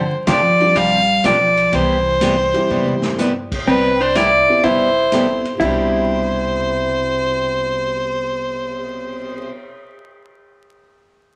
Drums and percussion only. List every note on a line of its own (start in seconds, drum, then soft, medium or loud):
0.27 kick soft
0.27 snare medium
0.27 hi-hat pedal medium
0.27 ride medium
0.60 ride soft
0.76 kick soft
0.76 ride medium
1.24 kick soft
1.24 snare medium
1.24 hi-hat pedal medium
1.24 ride medium
1.57 ride medium
1.73 kick soft
1.73 ride medium
2.21 kick soft
2.21 snare medium
2.21 hi-hat pedal medium
2.21 ride medium
2.54 ride soft
2.70 mid tom medium
2.86 mid tom medium
3.02 snare medium
3.18 snare medium
3.18 hi-hat pedal medium
3.52 kick medium
3.52 crash medium
3.67 kick soft
4.15 snare medium
4.15 hi-hat pedal medium
4.15 ride medium
4.64 kick soft
4.64 ride medium
5.12 snare medium
5.12 hi-hat pedal medium
5.12 ride medium
5.45 ride soft
5.60 kick medium
5.60 crash medium
5.94 cymbal swell soft